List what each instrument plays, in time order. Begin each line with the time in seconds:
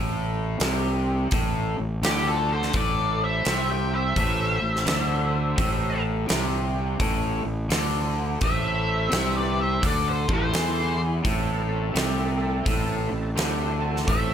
Already playing: fingered electric bass A1, overdriven electric guitar A2
0.60 fingered electric bass C2, overdriven electric guitar C3, snare, open hi-hat
1.31 fingered electric bass A1, overdriven electric guitar A2, kick, open hi-hat
1.79 fingered electric bass A1, overdriven electric guitar A2
2.02 fingered electric bass D2, overdriven electric guitar D3, lead electric guitar G4, snare, open hi-hat
2.06 lead electric guitar E4
2.28 lead electric guitar F4 A4
2.52 lead electric guitar A4 C5
2.62 snare
2.73 fingered electric bass A1, overdriven electric guitar A2, lead electric guitar A4 D5, kick, open hi-hat
3.24 lead electric guitar C5 E5
3.45 fingered electric bass C2, overdriven electric guitar C3, snare, open hi-hat
3.70 lead electric guitar E5 G5
3.95 lead electric guitar C5 E5
4.16 fingered electric bass A1, overdriven electric guitar A2, kick, open hi-hat
4.60 fingered electric bass A1, overdriven electric guitar A2
4.76 snare
4.86 fingered electric bass D2, overdriven electric guitar D3, snare, open hi-hat
5.57 fingered electric bass A1, overdriven electric guitar A2, kick, open hi-hat
6.28 fingered electric bass C2, overdriven electric guitar C3, snare, open hi-hat
7.00 fingered electric bass A1, overdriven electric guitar A2, kick, open hi-hat
7.45 fingered electric bass A1, overdriven electric guitar A2
7.69 fingered electric bass D2, overdriven electric guitar D3, snare, open hi-hat
8.41 fingered electric bass A1, overdriven electric guitar A2, lead electric guitar E5, kick, open hi-hat
8.46 lead electric guitar C5
9.11 fingered electric bass C2, overdriven electric guitar C3, snare, open hi-hat
9.36 lead electric guitar B4 D5
9.61 lead electric guitar C5 E5
9.82 fingered electric bass D2, overdriven electric guitar D3, kick, open hi-hat
9.87 lead electric guitar A4 D5
10.09 lead electric guitar A4 C5
10.28 fingered electric bass A1, overdriven electric guitar A2, kick
10.33 lead electric guitar A4 C5
10.54 fingered electric bass E2, overdriven electric guitar E3, snare, open hi-hat
11.23 fingered electric bass A1, overdriven electric guitar A2, tonewheel organ A3 C4 E4 A4, kick, open hi-hat
11.68 tonewheel organ A3 C4 E4 A4
11.91 overdriven electric guitar C3, tonewheel organ A3 C4 E4 A4
11.95 fingered electric bass C2, snare, open hi-hat
12.37 tonewheel organ A3 C4 E4 A4
12.63 fingered electric bass A1, overdriven electric guitar A2, tonewheel organ A3 C4 E4 A4, kick
12.67 open hi-hat
13.07 tonewheel organ A3 C4 E4 A4
13.12 fingered electric bass A1, overdriven electric guitar A2
13.34 fingered electric bass D2, overdriven electric guitar D3, tonewheel organ A3 C4 E4 G4, open hi-hat
13.39 snare
13.78 tonewheel organ A3 C4 E4 A4
13.96 snare
14.04 fingered electric bass A1, tonewheel organ A3 C4 E4 A4, lead electric guitar E5, kick, open hi-hat
14.09 overdriven electric guitar A2, lead electric guitar C5